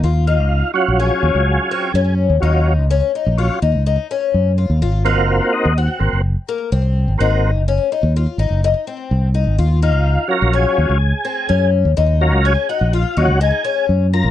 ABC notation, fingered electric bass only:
X:1
M:5/4
L:1/16
Q:1/4=126
K:Ebdor
V:1 name="Fingered electric bass" clef=bass
E,,3 D,,2 z2 B,,,2 z E,, D,,2 z3 G,,3 E,, | E,,3 D,,2 z2 B,,,2 z E,, D,,2 z3 G,,3 E,, | A,,,3 G,,,2 z2 E,,2 z A,,, G,,,2 z3 C,,3 A,,, | A,,,3 G,,,2 z2 E,,2 z A,,, G,,,2 z3 C,,3 A,,, |
E,,3 D,,2 z2 B,,,2 z E,, D,,2 z3 G,,3 E,, | E,,3 D,,2 z2 B,,,2 z E,, D,,2 z3 G,,3 B,,, |]